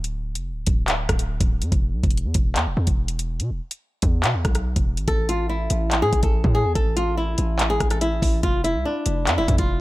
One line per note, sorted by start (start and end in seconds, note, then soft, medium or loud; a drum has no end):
0.00 0.37 D1 loud
0.04 closed hi-hat medium
0.35 0.53 F1 loud
0.35 closed hi-hat medium
0.51 0.66 D1 loud
0.67 1.07 D1 loud
0.67 kick loud
0.67 closed hi-hat medium
0.88 clap loud
0.88 closed hi-hat medium
1.09 1.39 D1 loud
1.09 kick medium
1.09 cross-stick medium
1.09 closed hi-hat medium
1.19 closed hi-hat medium
1.41 1.63 D1 loud
1.41 kick loud
1.41 closed hi-hat medium
1.62 1.72 F2 medium
1.62 closed hi-hat medium
1.72 1.95 E1 loud
1.72 kick loud
1.72 closed hi-hat medium
1.93 2.03 B1 loud
2.03 2.26 E1 loud
2.03 kick loud
2.03 closed hi-hat soft
2.10 closed hi-hat medium
2.17 closed hi-hat medium
2.25 2.34 E2 loud
2.34 2.57 E1 loud
2.34 kick loud
2.34 closed hi-hat medium
2.56 2.68 E2 loud
2.56 clap loud
2.56 closed hi-hat medium
2.66 2.76 E1 loud
2.77 2.87 E2 loud
2.87 3.41 E1 loud
2.87 kick loud
2.87 closed hi-hat medium
3.08 closed hi-hat medium
3.19 closed hi-hat medium
3.40 3.52 B2 loud
3.40 closed hi-hat medium
3.50 3.60 E1 loud
3.71 closed hi-hat medium
4.02 4.25 E2 loud
4.02 kick loud
4.02 closed hi-hat medium
4.24 4.36 B2 loud
4.24 clap loud
4.24 closed hi-hat medium
4.34 4.44 E2 loud
4.45 4.75 B1 loud
4.45 kick loud
4.45 cross-stick medium
4.45 closed hi-hat medium
4.55 cross-stick medium
4.55 closed hi-hat medium
4.76 4.99 E1 loud
4.76 kick loud
4.76 closed hi-hat medium
4.97 5.07 G#1 loud
4.97 closed hi-hat medium
5.08 5.68 A1 loud
5.08 5.27 A4 loud
5.08 kick loud
5.08 closed hi-hat medium
5.29 5.48 F4 medium
5.29 closed hi-hat medium
5.49 5.99 E4 medium
5.70 6.04 A1 loud
5.70 closed hi-hat medium
5.91 clap loud
5.91 closed hi-hat medium
6.02 6.12 A2 loud
6.02 6.22 G#4 medium
6.13 6.23 A1 loud
6.13 kick loud
6.13 closed hi-hat medium
6.23 6.43 A1 loud
6.23 6.53 A4 medium
6.23 kick loud
6.23 closed hi-hat medium
6.44 6.66 A2 loud
6.44 kick loud
6.55 6.74 G#4 medium
6.65 6.75 E2 loud
6.75 7.36 A1 loud
6.75 6.95 A4 medium
6.75 kick loud
6.75 closed hi-hat medium
6.97 7.16 F4 medium
6.97 closed hi-hat medium
7.17 7.67 E4 medium
7.38 7.79 A1 loud
7.38 closed hi-hat medium
7.59 clap loud
7.59 closed hi-hat medium
7.70 7.89 G#4 medium
7.80 8.21 A1 loud
7.80 kick medium
7.80 cross-stick medium
7.80 closed hi-hat medium
7.90 8.01 A4 medium
7.90 cross-stick medium
7.90 closed hi-hat medium
8.01 8.41 E4 medium
8.01 closed hi-hat medium
8.22 8.43 A1 loud
8.22 kick loud
8.22 open hi-hat medium
8.43 8.76 F1 loud
8.43 8.63 F4 loud
8.43 kick loud
8.43 closed hi-hat medium
8.64 8.84 E4 medium
8.64 closed hi-hat medium
8.75 8.85 C2 loud
8.85 9.35 D4 medium
9.06 9.29 F1 loud
9.06 closed hi-hat medium
9.27 9.39 F2 loud
9.27 clap loud
9.27 closed hi-hat medium
9.38 9.48 F1 loud
9.38 9.57 E4 medium
9.48 9.58 F2 loud
9.48 kick loud
9.48 closed hi-hat medium
9.58 9.79 F1 loud
9.58 9.81 F4 medium
9.58 kick loud
9.58 closed hi-hat medium